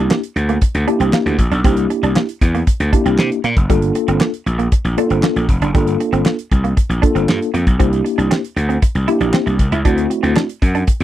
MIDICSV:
0, 0, Header, 1, 6, 480
1, 0, Start_track
1, 0, Tempo, 512821
1, 1539, Time_signature, 4, 2, 24, 8
1, 10331, End_track
2, 0, Start_track
2, 0, Title_t, "Tine electric piano"
2, 0, Program_c, 0, 4
2, 0, Note_on_c, 0, 58, 80
2, 0, Note_on_c, 0, 62, 72
2, 0, Note_on_c, 0, 64, 73
2, 0, Note_on_c, 0, 67, 88
2, 194, Note_off_c, 0, 58, 0
2, 195, Note_off_c, 0, 62, 0
2, 196, Note_off_c, 0, 64, 0
2, 198, Note_off_c, 0, 67, 0
2, 816, Note_on_c, 0, 58, 85
2, 818, Note_on_c, 0, 62, 76
2, 822, Note_on_c, 0, 64, 77
2, 824, Note_on_c, 0, 67, 88
2, 1249, Note_off_c, 0, 58, 0
2, 1250, Note_off_c, 0, 62, 0
2, 1252, Note_off_c, 0, 64, 0
2, 1253, Note_off_c, 0, 67, 0
2, 1537, Note_on_c, 0, 58, 76
2, 1539, Note_on_c, 0, 62, 67
2, 1542, Note_on_c, 0, 63, 54
2, 1545, Note_on_c, 0, 67, 85
2, 1598, Note_off_c, 0, 63, 0
2, 1600, Note_on_c, 0, 64, 67
2, 2114, Note_off_c, 0, 58, 0
2, 2115, Note_off_c, 0, 62, 0
2, 2117, Note_off_c, 0, 67, 0
2, 2145, Note_off_c, 0, 64, 0
2, 2736, Note_on_c, 0, 58, 83
2, 2738, Note_on_c, 0, 62, 76
2, 2741, Note_on_c, 0, 64, 75
2, 2743, Note_on_c, 0, 67, 85
2, 3169, Note_off_c, 0, 58, 0
2, 3170, Note_off_c, 0, 62, 0
2, 3172, Note_off_c, 0, 64, 0
2, 3173, Note_off_c, 0, 67, 0
2, 3457, Note_on_c, 0, 58, 72
2, 3458, Note_on_c, 0, 62, 75
2, 3460, Note_on_c, 0, 65, 72
2, 3462, Note_on_c, 0, 69, 86
2, 4034, Note_off_c, 0, 58, 0
2, 4034, Note_off_c, 0, 62, 0
2, 4035, Note_off_c, 0, 65, 0
2, 4036, Note_off_c, 0, 69, 0
2, 4654, Note_on_c, 0, 58, 78
2, 4659, Note_on_c, 0, 62, 72
2, 4659, Note_on_c, 0, 65, 77
2, 4661, Note_on_c, 0, 69, 86
2, 5088, Note_off_c, 0, 58, 0
2, 5090, Note_off_c, 0, 62, 0
2, 5091, Note_off_c, 0, 65, 0
2, 5092, Note_off_c, 0, 69, 0
2, 5375, Note_on_c, 0, 58, 81
2, 5378, Note_on_c, 0, 62, 76
2, 5380, Note_on_c, 0, 65, 72
2, 5382, Note_on_c, 0, 69, 89
2, 5952, Note_off_c, 0, 58, 0
2, 5954, Note_off_c, 0, 62, 0
2, 5955, Note_off_c, 0, 65, 0
2, 5956, Note_off_c, 0, 69, 0
2, 6575, Note_on_c, 0, 58, 80
2, 6578, Note_on_c, 0, 62, 79
2, 6581, Note_on_c, 0, 65, 70
2, 6582, Note_on_c, 0, 69, 88
2, 7008, Note_off_c, 0, 58, 0
2, 7010, Note_off_c, 0, 62, 0
2, 7012, Note_off_c, 0, 65, 0
2, 7012, Note_off_c, 0, 69, 0
2, 7295, Note_on_c, 0, 58, 80
2, 7296, Note_on_c, 0, 62, 69
2, 7300, Note_on_c, 0, 64, 71
2, 7301, Note_on_c, 0, 67, 84
2, 7873, Note_off_c, 0, 58, 0
2, 7873, Note_off_c, 0, 62, 0
2, 7875, Note_off_c, 0, 64, 0
2, 7875, Note_off_c, 0, 67, 0
2, 8496, Note_on_c, 0, 58, 82
2, 8499, Note_on_c, 0, 62, 75
2, 8503, Note_on_c, 0, 64, 76
2, 8506, Note_on_c, 0, 67, 89
2, 8929, Note_off_c, 0, 58, 0
2, 8931, Note_off_c, 0, 62, 0
2, 8932, Note_off_c, 0, 64, 0
2, 8934, Note_off_c, 0, 67, 0
2, 9218, Note_on_c, 0, 57, 74
2, 9218, Note_on_c, 0, 60, 72
2, 9221, Note_on_c, 0, 64, 76
2, 9225, Note_on_c, 0, 66, 84
2, 9794, Note_off_c, 0, 57, 0
2, 9794, Note_off_c, 0, 60, 0
2, 9795, Note_off_c, 0, 64, 0
2, 9797, Note_off_c, 0, 66, 0
2, 10331, End_track
3, 0, Start_track
3, 0, Title_t, "Clean electric guitar"
3, 0, Program_c, 1, 27
3, 100, Note_on_c, 1, 58, 85
3, 169, Note_off_c, 1, 58, 0
3, 460, Note_on_c, 1, 58, 76
3, 529, Note_off_c, 1, 58, 0
3, 819, Note_on_c, 1, 62, 88
3, 889, Note_off_c, 1, 62, 0
3, 942, Note_on_c, 1, 60, 70
3, 1011, Note_off_c, 1, 60, 0
3, 1062, Note_on_c, 1, 58, 79
3, 1130, Note_off_c, 1, 58, 0
3, 1419, Note_on_c, 1, 62, 75
3, 1488, Note_off_c, 1, 62, 0
3, 1541, Note_on_c, 1, 60, 77
3, 1610, Note_off_c, 1, 60, 0
3, 1904, Note_on_c, 1, 62, 84
3, 1972, Note_off_c, 1, 62, 0
3, 2021, Note_on_c, 1, 58, 85
3, 2090, Note_off_c, 1, 58, 0
3, 2383, Note_on_c, 1, 58, 72
3, 2452, Note_off_c, 1, 58, 0
3, 2739, Note_on_c, 1, 62, 77
3, 2809, Note_off_c, 1, 62, 0
3, 2862, Note_on_c, 1, 60, 63
3, 2930, Note_off_c, 1, 60, 0
3, 3222, Note_on_c, 1, 58, 70
3, 3291, Note_off_c, 1, 58, 0
3, 3460, Note_on_c, 1, 55, 88
3, 3529, Note_off_c, 1, 55, 0
3, 3822, Note_on_c, 1, 60, 73
3, 3891, Note_off_c, 1, 60, 0
3, 3938, Note_on_c, 1, 58, 84
3, 4008, Note_off_c, 1, 58, 0
3, 4295, Note_on_c, 1, 58, 75
3, 4365, Note_off_c, 1, 58, 0
3, 4663, Note_on_c, 1, 62, 86
3, 4731, Note_off_c, 1, 62, 0
3, 4782, Note_on_c, 1, 60, 68
3, 4851, Note_off_c, 1, 60, 0
3, 4901, Note_on_c, 1, 58, 79
3, 4970, Note_off_c, 1, 58, 0
3, 5261, Note_on_c, 1, 62, 72
3, 5330, Note_off_c, 1, 62, 0
3, 5379, Note_on_c, 1, 55, 80
3, 5448, Note_off_c, 1, 55, 0
3, 5736, Note_on_c, 1, 60, 87
3, 5806, Note_off_c, 1, 60, 0
3, 5858, Note_on_c, 1, 58, 75
3, 5928, Note_off_c, 1, 58, 0
3, 6216, Note_on_c, 1, 58, 65
3, 6286, Note_off_c, 1, 58, 0
3, 6571, Note_on_c, 1, 62, 77
3, 6643, Note_off_c, 1, 62, 0
3, 6693, Note_on_c, 1, 60, 71
3, 6765, Note_off_c, 1, 60, 0
3, 7055, Note_on_c, 1, 58, 68
3, 7126, Note_off_c, 1, 58, 0
3, 7296, Note_on_c, 1, 60, 86
3, 7367, Note_off_c, 1, 60, 0
3, 7656, Note_on_c, 1, 62, 71
3, 7726, Note_off_c, 1, 62, 0
3, 7775, Note_on_c, 1, 60, 83
3, 7846, Note_off_c, 1, 60, 0
3, 8133, Note_on_c, 1, 60, 71
3, 8205, Note_off_c, 1, 60, 0
3, 8498, Note_on_c, 1, 64, 84
3, 8568, Note_off_c, 1, 64, 0
3, 8619, Note_on_c, 1, 62, 73
3, 8689, Note_off_c, 1, 62, 0
3, 8736, Note_on_c, 1, 60, 74
3, 8807, Note_off_c, 1, 60, 0
3, 9101, Note_on_c, 1, 64, 76
3, 9170, Note_off_c, 1, 64, 0
3, 9219, Note_on_c, 1, 62, 81
3, 9289, Note_off_c, 1, 62, 0
3, 9574, Note_on_c, 1, 60, 80
3, 9645, Note_off_c, 1, 60, 0
3, 9698, Note_on_c, 1, 62, 81
3, 9768, Note_off_c, 1, 62, 0
3, 10061, Note_on_c, 1, 62, 71
3, 10130, Note_off_c, 1, 62, 0
3, 10331, End_track
4, 0, Start_track
4, 0, Title_t, "Slap bass"
4, 0, Program_c, 2, 36
4, 335, Note_on_c, 2, 38, 96
4, 531, Note_off_c, 2, 38, 0
4, 698, Note_on_c, 2, 38, 80
4, 796, Note_off_c, 2, 38, 0
4, 934, Note_on_c, 2, 36, 86
4, 1033, Note_off_c, 2, 36, 0
4, 1176, Note_on_c, 2, 38, 82
4, 1274, Note_off_c, 2, 38, 0
4, 1296, Note_on_c, 2, 34, 92
4, 1394, Note_off_c, 2, 34, 0
4, 1415, Note_on_c, 2, 35, 87
4, 1514, Note_off_c, 2, 35, 0
4, 1539, Note_on_c, 2, 36, 97
4, 1733, Note_off_c, 2, 36, 0
4, 1898, Note_on_c, 2, 36, 94
4, 1996, Note_off_c, 2, 36, 0
4, 2260, Note_on_c, 2, 40, 85
4, 2454, Note_off_c, 2, 40, 0
4, 2621, Note_on_c, 2, 38, 86
4, 2717, Note_off_c, 2, 38, 0
4, 2859, Note_on_c, 2, 36, 80
4, 2956, Note_off_c, 2, 36, 0
4, 2981, Note_on_c, 2, 48, 107
4, 3077, Note_off_c, 2, 48, 0
4, 3220, Note_on_c, 2, 46, 86
4, 3317, Note_off_c, 2, 46, 0
4, 3338, Note_on_c, 2, 30, 84
4, 3436, Note_off_c, 2, 30, 0
4, 3459, Note_on_c, 2, 31, 104
4, 3653, Note_off_c, 2, 31, 0
4, 3818, Note_on_c, 2, 31, 102
4, 3915, Note_off_c, 2, 31, 0
4, 4177, Note_on_c, 2, 34, 92
4, 4372, Note_off_c, 2, 34, 0
4, 4535, Note_on_c, 2, 34, 82
4, 4634, Note_off_c, 2, 34, 0
4, 4777, Note_on_c, 2, 31, 83
4, 4875, Note_off_c, 2, 31, 0
4, 5017, Note_on_c, 2, 34, 84
4, 5115, Note_off_c, 2, 34, 0
4, 5137, Note_on_c, 2, 29, 88
4, 5235, Note_off_c, 2, 29, 0
4, 5254, Note_on_c, 2, 30, 98
4, 5353, Note_off_c, 2, 30, 0
4, 5380, Note_on_c, 2, 31, 103
4, 5574, Note_off_c, 2, 31, 0
4, 5731, Note_on_c, 2, 31, 93
4, 5832, Note_off_c, 2, 31, 0
4, 6098, Note_on_c, 2, 36, 91
4, 6293, Note_off_c, 2, 36, 0
4, 6452, Note_on_c, 2, 34, 84
4, 6552, Note_off_c, 2, 34, 0
4, 6693, Note_on_c, 2, 31, 85
4, 6793, Note_off_c, 2, 31, 0
4, 6814, Note_on_c, 2, 43, 105
4, 6913, Note_off_c, 2, 43, 0
4, 7056, Note_on_c, 2, 41, 83
4, 7154, Note_off_c, 2, 41, 0
4, 7178, Note_on_c, 2, 35, 95
4, 7275, Note_off_c, 2, 35, 0
4, 7297, Note_on_c, 2, 36, 100
4, 7492, Note_off_c, 2, 36, 0
4, 7657, Note_on_c, 2, 36, 90
4, 7755, Note_off_c, 2, 36, 0
4, 8015, Note_on_c, 2, 38, 93
4, 8211, Note_off_c, 2, 38, 0
4, 8378, Note_on_c, 2, 36, 87
4, 8475, Note_off_c, 2, 36, 0
4, 8616, Note_on_c, 2, 34, 94
4, 8714, Note_off_c, 2, 34, 0
4, 8859, Note_on_c, 2, 36, 87
4, 8956, Note_off_c, 2, 36, 0
4, 8977, Note_on_c, 2, 36, 75
4, 9075, Note_off_c, 2, 36, 0
4, 9097, Note_on_c, 2, 37, 92
4, 9195, Note_off_c, 2, 37, 0
4, 9219, Note_on_c, 2, 38, 100
4, 9413, Note_off_c, 2, 38, 0
4, 9578, Note_on_c, 2, 38, 105
4, 9676, Note_off_c, 2, 38, 0
4, 9940, Note_on_c, 2, 42, 89
4, 10134, Note_off_c, 2, 42, 0
4, 10299, Note_on_c, 2, 41, 89
4, 10331, Note_off_c, 2, 41, 0
4, 10331, End_track
5, 0, Start_track
5, 0, Title_t, "Muted clean electric guitar strokes"
5, 341, Note_on_c, 9, 29, 44
5, 435, Note_off_c, 9, 29, 0
5, 583, Note_on_c, 9, 29, 44
5, 676, Note_off_c, 9, 29, 0
5, 1181, Note_on_c, 9, 29, 49
5, 1274, Note_off_c, 9, 29, 0
5, 1781, Note_on_c, 9, 29, 48
5, 1875, Note_off_c, 9, 29, 0
5, 2260, Note_on_c, 9, 29, 40
5, 2353, Note_off_c, 9, 29, 0
5, 2503, Note_on_c, 9, 29, 45
5, 2596, Note_off_c, 9, 29, 0
5, 3702, Note_on_c, 9, 29, 42
5, 3796, Note_off_c, 9, 29, 0
5, 4178, Note_on_c, 9, 29, 42
5, 4271, Note_off_c, 9, 29, 0
5, 4422, Note_on_c, 9, 29, 44
5, 4516, Note_off_c, 9, 29, 0
5, 5022, Note_on_c, 9, 29, 49
5, 5116, Note_off_c, 9, 29, 0
5, 5620, Note_on_c, 9, 29, 49
5, 5714, Note_off_c, 9, 29, 0
5, 6098, Note_on_c, 9, 29, 40
5, 6191, Note_off_c, 9, 29, 0
5, 6335, Note_on_c, 9, 29, 44
5, 6429, Note_off_c, 9, 29, 0
5, 7530, Note_on_c, 9, 29, 44
5, 7624, Note_off_c, 9, 29, 0
5, 8017, Note_on_c, 9, 29, 42
5, 8111, Note_off_c, 9, 29, 0
5, 8258, Note_on_c, 9, 29, 44
5, 8352, Note_off_c, 9, 29, 0
5, 8856, Note_on_c, 9, 29, 44
5, 8950, Note_off_c, 9, 29, 0
5, 9457, Note_on_c, 9, 29, 47
5, 9550, Note_off_c, 9, 29, 0
5, 9940, Note_on_c, 9, 29, 44
5, 10034, Note_off_c, 9, 29, 0
5, 10179, Note_on_c, 9, 29, 42
5, 10273, Note_off_c, 9, 29, 0
5, 10331, End_track
6, 0, Start_track
6, 0, Title_t, "Drums"
6, 99, Note_on_c, 9, 39, 89
6, 103, Note_on_c, 9, 38, 113
6, 193, Note_off_c, 9, 39, 0
6, 197, Note_off_c, 9, 38, 0
6, 219, Note_on_c, 9, 42, 65
6, 313, Note_off_c, 9, 42, 0
6, 342, Note_on_c, 9, 42, 72
6, 435, Note_off_c, 9, 42, 0
6, 458, Note_on_c, 9, 42, 45
6, 551, Note_off_c, 9, 42, 0
6, 575, Note_on_c, 9, 42, 90
6, 579, Note_on_c, 9, 36, 98
6, 668, Note_off_c, 9, 42, 0
6, 672, Note_off_c, 9, 36, 0
6, 698, Note_on_c, 9, 42, 53
6, 792, Note_off_c, 9, 42, 0
6, 822, Note_on_c, 9, 42, 67
6, 916, Note_off_c, 9, 42, 0
6, 939, Note_on_c, 9, 42, 54
6, 1033, Note_off_c, 9, 42, 0
6, 1056, Note_on_c, 9, 39, 98
6, 1060, Note_on_c, 9, 38, 116
6, 1150, Note_off_c, 9, 39, 0
6, 1154, Note_off_c, 9, 38, 0
6, 1183, Note_on_c, 9, 42, 49
6, 1277, Note_off_c, 9, 42, 0
6, 1297, Note_on_c, 9, 36, 87
6, 1297, Note_on_c, 9, 42, 73
6, 1391, Note_off_c, 9, 36, 0
6, 1391, Note_off_c, 9, 42, 0
6, 1418, Note_on_c, 9, 42, 50
6, 1512, Note_off_c, 9, 42, 0
6, 1539, Note_on_c, 9, 36, 115
6, 1539, Note_on_c, 9, 42, 77
6, 1632, Note_off_c, 9, 42, 0
6, 1633, Note_off_c, 9, 36, 0
6, 1655, Note_on_c, 9, 42, 53
6, 1748, Note_off_c, 9, 42, 0
6, 1782, Note_on_c, 9, 42, 78
6, 1876, Note_off_c, 9, 42, 0
6, 1904, Note_on_c, 9, 42, 49
6, 1998, Note_off_c, 9, 42, 0
6, 2022, Note_on_c, 9, 39, 87
6, 2026, Note_on_c, 9, 38, 116
6, 2115, Note_off_c, 9, 39, 0
6, 2119, Note_off_c, 9, 38, 0
6, 2141, Note_on_c, 9, 42, 62
6, 2235, Note_off_c, 9, 42, 0
6, 2260, Note_on_c, 9, 36, 101
6, 2262, Note_on_c, 9, 42, 66
6, 2354, Note_off_c, 9, 36, 0
6, 2356, Note_off_c, 9, 42, 0
6, 2384, Note_on_c, 9, 42, 45
6, 2478, Note_off_c, 9, 42, 0
6, 2500, Note_on_c, 9, 42, 86
6, 2501, Note_on_c, 9, 36, 101
6, 2593, Note_off_c, 9, 42, 0
6, 2595, Note_off_c, 9, 36, 0
6, 2623, Note_on_c, 9, 42, 52
6, 2716, Note_off_c, 9, 42, 0
6, 2741, Note_on_c, 9, 36, 91
6, 2743, Note_on_c, 9, 42, 65
6, 2835, Note_off_c, 9, 36, 0
6, 2837, Note_off_c, 9, 42, 0
6, 2862, Note_on_c, 9, 42, 54
6, 2955, Note_off_c, 9, 42, 0
6, 2979, Note_on_c, 9, 39, 83
6, 2983, Note_on_c, 9, 38, 114
6, 3073, Note_off_c, 9, 39, 0
6, 3077, Note_off_c, 9, 38, 0
6, 3105, Note_on_c, 9, 42, 48
6, 3199, Note_off_c, 9, 42, 0
6, 3219, Note_on_c, 9, 42, 77
6, 3312, Note_off_c, 9, 42, 0
6, 3339, Note_on_c, 9, 36, 107
6, 3339, Note_on_c, 9, 42, 48
6, 3432, Note_off_c, 9, 36, 0
6, 3433, Note_off_c, 9, 42, 0
6, 3460, Note_on_c, 9, 36, 107
6, 3461, Note_on_c, 9, 42, 81
6, 3554, Note_off_c, 9, 36, 0
6, 3555, Note_off_c, 9, 42, 0
6, 3578, Note_on_c, 9, 42, 54
6, 3671, Note_off_c, 9, 42, 0
6, 3698, Note_on_c, 9, 42, 84
6, 3792, Note_off_c, 9, 42, 0
6, 3819, Note_on_c, 9, 42, 51
6, 3912, Note_off_c, 9, 42, 0
6, 3936, Note_on_c, 9, 39, 94
6, 3940, Note_on_c, 9, 38, 109
6, 4030, Note_off_c, 9, 39, 0
6, 4034, Note_off_c, 9, 38, 0
6, 4059, Note_on_c, 9, 42, 59
6, 4153, Note_off_c, 9, 42, 0
6, 4182, Note_on_c, 9, 42, 72
6, 4275, Note_off_c, 9, 42, 0
6, 4299, Note_on_c, 9, 42, 45
6, 4393, Note_off_c, 9, 42, 0
6, 4417, Note_on_c, 9, 42, 90
6, 4419, Note_on_c, 9, 36, 102
6, 4510, Note_off_c, 9, 42, 0
6, 4513, Note_off_c, 9, 36, 0
6, 4540, Note_on_c, 9, 42, 52
6, 4633, Note_off_c, 9, 42, 0
6, 4659, Note_on_c, 9, 42, 65
6, 4752, Note_off_c, 9, 42, 0
6, 4775, Note_on_c, 9, 42, 51
6, 4869, Note_off_c, 9, 42, 0
6, 4895, Note_on_c, 9, 39, 94
6, 4899, Note_on_c, 9, 38, 114
6, 4989, Note_off_c, 9, 39, 0
6, 4993, Note_off_c, 9, 38, 0
6, 5020, Note_on_c, 9, 42, 47
6, 5114, Note_off_c, 9, 42, 0
6, 5136, Note_on_c, 9, 36, 88
6, 5137, Note_on_c, 9, 42, 76
6, 5230, Note_off_c, 9, 36, 0
6, 5230, Note_off_c, 9, 42, 0
6, 5258, Note_on_c, 9, 42, 52
6, 5352, Note_off_c, 9, 42, 0
6, 5379, Note_on_c, 9, 36, 122
6, 5379, Note_on_c, 9, 42, 70
6, 5472, Note_off_c, 9, 42, 0
6, 5473, Note_off_c, 9, 36, 0
6, 5497, Note_on_c, 9, 42, 58
6, 5591, Note_off_c, 9, 42, 0
6, 5619, Note_on_c, 9, 42, 85
6, 5713, Note_off_c, 9, 42, 0
6, 5738, Note_on_c, 9, 42, 51
6, 5832, Note_off_c, 9, 42, 0
6, 5855, Note_on_c, 9, 39, 90
6, 5859, Note_on_c, 9, 38, 121
6, 5948, Note_off_c, 9, 39, 0
6, 5952, Note_off_c, 9, 38, 0
6, 5978, Note_on_c, 9, 42, 60
6, 6072, Note_off_c, 9, 42, 0
6, 6098, Note_on_c, 9, 36, 91
6, 6099, Note_on_c, 9, 42, 73
6, 6191, Note_off_c, 9, 36, 0
6, 6192, Note_off_c, 9, 42, 0
6, 6219, Note_on_c, 9, 42, 45
6, 6313, Note_off_c, 9, 42, 0
6, 6338, Note_on_c, 9, 42, 89
6, 6339, Note_on_c, 9, 36, 99
6, 6431, Note_off_c, 9, 42, 0
6, 6433, Note_off_c, 9, 36, 0
6, 6464, Note_on_c, 9, 42, 51
6, 6557, Note_off_c, 9, 42, 0
6, 6580, Note_on_c, 9, 36, 94
6, 6582, Note_on_c, 9, 42, 60
6, 6674, Note_off_c, 9, 36, 0
6, 6676, Note_off_c, 9, 42, 0
6, 6701, Note_on_c, 9, 42, 52
6, 6794, Note_off_c, 9, 42, 0
6, 6822, Note_on_c, 9, 39, 88
6, 6826, Note_on_c, 9, 38, 119
6, 6915, Note_off_c, 9, 39, 0
6, 6919, Note_off_c, 9, 38, 0
6, 6947, Note_on_c, 9, 42, 50
6, 7041, Note_off_c, 9, 42, 0
6, 7061, Note_on_c, 9, 42, 77
6, 7155, Note_off_c, 9, 42, 0
6, 7178, Note_on_c, 9, 36, 99
6, 7179, Note_on_c, 9, 42, 50
6, 7271, Note_off_c, 9, 36, 0
6, 7273, Note_off_c, 9, 42, 0
6, 7299, Note_on_c, 9, 36, 111
6, 7300, Note_on_c, 9, 42, 74
6, 7393, Note_off_c, 9, 36, 0
6, 7394, Note_off_c, 9, 42, 0
6, 7420, Note_on_c, 9, 42, 54
6, 7514, Note_off_c, 9, 42, 0
6, 7543, Note_on_c, 9, 42, 82
6, 7636, Note_off_c, 9, 42, 0
6, 7667, Note_on_c, 9, 42, 51
6, 7761, Note_off_c, 9, 42, 0
6, 7784, Note_on_c, 9, 39, 93
6, 7788, Note_on_c, 9, 38, 116
6, 7878, Note_off_c, 9, 39, 0
6, 7882, Note_off_c, 9, 38, 0
6, 7904, Note_on_c, 9, 42, 64
6, 7998, Note_off_c, 9, 42, 0
6, 8022, Note_on_c, 9, 42, 77
6, 8116, Note_off_c, 9, 42, 0
6, 8142, Note_on_c, 9, 42, 45
6, 8236, Note_off_c, 9, 42, 0
6, 8258, Note_on_c, 9, 42, 90
6, 8260, Note_on_c, 9, 36, 102
6, 8351, Note_off_c, 9, 42, 0
6, 8353, Note_off_c, 9, 36, 0
6, 8379, Note_on_c, 9, 42, 47
6, 8472, Note_off_c, 9, 42, 0
6, 8499, Note_on_c, 9, 42, 67
6, 8593, Note_off_c, 9, 42, 0
6, 8617, Note_on_c, 9, 42, 52
6, 8711, Note_off_c, 9, 42, 0
6, 8738, Note_on_c, 9, 39, 90
6, 8742, Note_on_c, 9, 38, 114
6, 8831, Note_off_c, 9, 39, 0
6, 8835, Note_off_c, 9, 38, 0
6, 8864, Note_on_c, 9, 42, 46
6, 8957, Note_off_c, 9, 42, 0
6, 8978, Note_on_c, 9, 36, 84
6, 8979, Note_on_c, 9, 42, 75
6, 9072, Note_off_c, 9, 36, 0
6, 9072, Note_off_c, 9, 42, 0
6, 9098, Note_on_c, 9, 42, 52
6, 9192, Note_off_c, 9, 42, 0
6, 9220, Note_on_c, 9, 42, 76
6, 9222, Note_on_c, 9, 36, 105
6, 9314, Note_off_c, 9, 42, 0
6, 9315, Note_off_c, 9, 36, 0
6, 9338, Note_on_c, 9, 42, 59
6, 9432, Note_off_c, 9, 42, 0
6, 9461, Note_on_c, 9, 42, 75
6, 9554, Note_off_c, 9, 42, 0
6, 9584, Note_on_c, 9, 42, 48
6, 9678, Note_off_c, 9, 42, 0
6, 9700, Note_on_c, 9, 39, 90
6, 9704, Note_on_c, 9, 38, 127
6, 9794, Note_off_c, 9, 39, 0
6, 9798, Note_off_c, 9, 38, 0
6, 9822, Note_on_c, 9, 42, 63
6, 9916, Note_off_c, 9, 42, 0
6, 9941, Note_on_c, 9, 36, 96
6, 9942, Note_on_c, 9, 42, 71
6, 10035, Note_off_c, 9, 36, 0
6, 10036, Note_off_c, 9, 42, 0
6, 10061, Note_on_c, 9, 42, 47
6, 10154, Note_off_c, 9, 42, 0
6, 10177, Note_on_c, 9, 42, 86
6, 10182, Note_on_c, 9, 36, 99
6, 10271, Note_off_c, 9, 42, 0
6, 10275, Note_off_c, 9, 36, 0
6, 10299, Note_on_c, 9, 42, 50
6, 10331, Note_off_c, 9, 42, 0
6, 10331, End_track
0, 0, End_of_file